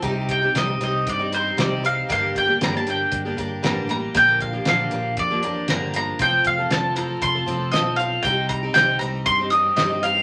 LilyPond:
<<
  \new Staff \with { instrumentName = "Mandolin" } { \time 4/4 \key c \dorian \tempo 4 = 117 r8 g''8 ees''8 ees''8 d''8 c''8 d''8 f''8 | f''8 g''8 bes''16 a''16 g''4. bes''8 bes''8 | g''8 f''8 f''4 d''4 bes''8 bes''8 | g''8 f''8 a''8 bes''8 c'''4 ees''8 f''8 |
g''8 bes''8 g''8 bes''8 c'''8 ees'''8 ees''8 f''8 | }
  \new Staff \with { instrumentName = "Twelve-string acoustic guitar" } { \time 4/4 \key c \dorian <c g c' ees' g'>8. <c' ees' g'>16 <c g c' ees' g'>16 <c' ees' g'>16 <g c' ees' g'>8. <c' ees' g'>16 <g c' ees' g'>8 <c g c' ees' g'>8 <g c' ees' g'>8 | <g, d g bes d' g'>8. <g bes d' g'>16 <g, d g bes d' g'>16 <g bes d' g'>16 <g bes d' g'>8. <g bes d' g'>16 <g bes d' g'>8 <g, d g bes d' g'>8 <g bes d' g'>8 | <bes, d f bes d' g'>8. <f bes d' g'>16 <bes, d f bes d' g'>8 <f bes d' g'>8. <f bes d' g'>16 <f bes d' g'>8 <bes, d f bes d' g'>8 <f bes d' g'>8 | <f c' f' a'>8. <c' f' a'>16 <f c' f' a'>8 <f c' f' a'>8. <c' f' a'>16 <f c' f' a'>8 <f c' f' a'>8 <f c' f' a'>8 |
<c g c' ees' g'>8. <c' ees' g'>16 <c g c' ees' g'>8 <g c' ees' g'>8. <c' ees' g'>16 <g c' ees' g'>8 <c g c' ees' g'>16 <c' ees' g'>16 <g c' ees' g'>8 | }
  \new Staff \with { instrumentName = "Fingered electric bass" } { \clef bass \time 4/4 \key c \dorian c,4 c,8 c,8 g,4 c,4 | g,,8 g,,8 g,,4 g,,8 g,,8 a,,4 | bes,,4 bes,,8 bes,,8 f,4 g,,4 | f,,8 f,,8 f,,4 f,,8 f,,8 b,,4 |
c,4 c,8 c,8 g,4 g,4 | }
  \new DrumStaff \with { instrumentName = "Drums" } \drummode { \time 4/4 <hh bd>8 <hh bd>8 <hh sn>8 hh8 <hh bd>8 hh8 <hh sn>8 hh8 | <hh bd>8 <hh bd>8 <hh sn>8 hh8 <hh bd>8 <hh bd>8 <hh sn>8 hh8 | <hh bd>8 <hh bd>8 <hh sn>8 hh8 <hh bd>8 hh8 <hh sn>8 hh8 | <hh bd>8 <hh bd>8 <hh sn>8 hh8 <hh bd>8 hh8 <hh sn>8 hh8 |
<hh bd>8 <hh bd>8 <hh sn>8 hh8 <hh bd>8 hh8 <hh sn>8 hh8 | }
>>